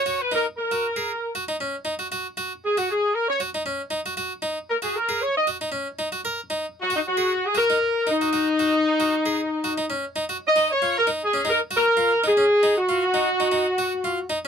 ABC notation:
X:1
M:4/4
L:1/16
Q:"Swing 16ths" 1/4=116
K:Dbmix
V:1 name="Horn section"
d c B2 B6 z6 | z4 A G A2 B d2 z4 z | z4 B A B2 d e2 z4 z | z4 G E G3 A B4 E2- |
E12 z4 | e2 d2 B2 A2 B2 B4 A2- | A2 G12 z2 |]
V:2 name="Harpsichord"
G2 E2 z G2 A2 z G E D2 E G | G2 G2 z G2 z3 G E D2 E G | G2 E2 z G2 A2 z G E D2 E G | B2 E2 z G2 A2 z G E z2 E G |
G2 G2 z G2 A2 z G E D2 E G | z E2 F2 E2 D E2 G2 F2 E D | z E2 F2 E2 E E2 G2 F2 E z |]